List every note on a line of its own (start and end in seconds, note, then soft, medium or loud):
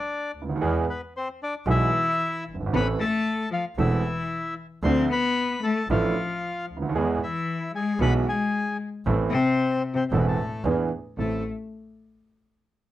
0.00 0.31 D4 medium
0.00 0.32 D5 medium
0.35 0.60 D2 medium
0.42 0.48 C#2 medium
0.49 0.55 D2 medium
0.55 0.61 D#2 medium
0.61 0.83 E2 loud
0.61 0.83 E2 medium
0.61 0.83 E3 medium
0.61 0.83 G#3 medium
0.61 0.83 B3 medium
0.61 0.84 G#4 medium
0.90 1.01 B3 medium
0.90 1.01 B4 medium
1.17 1.29 C4 medium
1.17 1.28 C5 medium
1.43 1.54 D4 medium
1.43 1.55 D5 medium
1.66 1.89 B1 loud
1.66 1.89 B2 medium
1.66 1.89 E3 medium
1.66 2.43 E3 medium
1.66 1.89 G#3 medium
1.66 1.89 B3 medium
1.66 2.44 E4 medium
1.66 1.89 G#4 medium
1.71 2.44 E5 loud
2.47 2.72 G1 medium
2.54 2.60 F#1 soft
2.60 2.66 G1 medium
2.66 2.73 G#1 medium
2.72 2.95 A1 medium
2.72 2.95 A2 medium
2.72 2.95 E3 medium
2.72 2.95 A3 medium
2.72 2.85 B3 medium
2.72 2.95 C4 medium
2.72 2.95 A4 medium
2.72 2.87 B4 medium
2.76 2.88 B5 loud
2.99 3.48 A3 loud
2.99 3.49 A4 medium
2.99 3.49 A5 loud
3.51 3.63 F3 medium
3.51 3.64 F4 medium
3.51 3.65 F5 medium
3.76 4.00 E1 loud
3.76 4.01 E1 medium
3.76 4.01 E2 medium
3.76 4.53 E3 medium
3.76 4.00 E3 medium
3.76 4.00 A3 medium
3.76 4.01 C4 medium
3.76 4.55 E4 medium
3.76 4.01 A4 medium
3.76 4.54 E5 medium
4.83 5.06 D2 loud
4.83 5.07 D2 medium
4.83 5.07 D3 medium
4.83 5.06 F3 medium
4.83 5.07 A3 medium
4.83 5.09 C4 medium
4.83 5.07 D4 medium
4.83 5.07 A4 medium
4.83 5.09 C5 medium
4.83 5.09 C6 loud
5.09 5.59 B3 loud
5.09 5.60 B4 medium
5.09 5.66 B5 loud
5.63 5.88 A3 medium
5.63 5.88 A4 medium
5.63 5.88 A5 medium
5.89 6.11 A1 medium
5.89 6.12 A1 medium
5.89 6.12 A2 medium
5.89 6.65 F3 medium
5.89 6.12 F3 medium
5.89 6.12 A3 medium
5.89 6.12 D4 medium
5.89 6.65 F4 medium
5.89 6.13 A4 medium
5.89 6.66 F5 medium
6.68 6.93 D2 medium
6.77 6.83 C#2 medium
6.82 6.89 D2 medium
6.89 6.95 D#2 medium
6.93 7.16 E2 medium
6.93 7.18 E2 medium
6.93 7.18 E3 medium
6.93 7.18 G#3 medium
6.93 7.18 B3 medium
6.93 7.18 G#4 medium
7.22 7.71 E3 medium
7.22 7.71 E4 medium
7.22 7.71 E5 medium
7.75 7.99 G#3 medium
7.75 8.00 G#4 medium
7.75 8.00 G#5 loud
7.99 8.22 B1 loud
7.99 8.23 B1 loud
7.99 8.23 B2 medium
7.99 8.23 E3 medium
7.99 8.23 G#3 medium
7.99 8.12 B3 medium
7.99 8.23 B3 medium
7.99 8.23 G#4 medium
7.99 8.14 B4 medium
7.99 8.14 B5 loud
8.26 8.76 G#3 medium
8.26 8.77 G#4 medium
8.26 8.77 G#5 medium
9.06 9.28 A1 loud
9.06 9.29 A1 medium
9.06 9.29 A2 medium
9.06 9.29 E3 medium
9.06 9.29 A3 medium
9.06 9.29 C4 medium
9.06 9.29 A4 medium
9.31 9.81 C3 loud
9.31 9.82 C4 medium
9.31 9.82 C5 loud
9.94 10.02 C3 medium
9.94 10.03 C4 medium
9.94 10.04 C5 medium
10.11 10.34 E1 medium
10.11 10.34 E2 medium
10.11 10.18 A2 medium
10.11 10.34 E3 medium
10.11 10.19 A3 medium
10.11 10.35 A3 medium
10.11 10.35 C4 medium
10.11 10.35 A4 medium
10.11 10.19 A4 medium
10.19 10.24 B2 medium
10.19 10.26 B4 medium
10.25 10.62 A2 medium
10.25 10.63 A3 medium
10.25 10.63 A4 medium
10.64 10.87 E2 medium
10.64 10.88 E2 medium
10.64 10.88 E3 medium
10.64 10.88 B3 medium
10.64 10.88 D4 medium
10.64 10.88 G#4 medium
11.17 11.40 A1 medium
11.17 11.41 A1 medium
11.17 11.42 A3 medium
11.17 11.41 C4 soft
11.17 11.40 E4 medium
11.17 11.41 A4 medium
11.17 11.44 A4 medium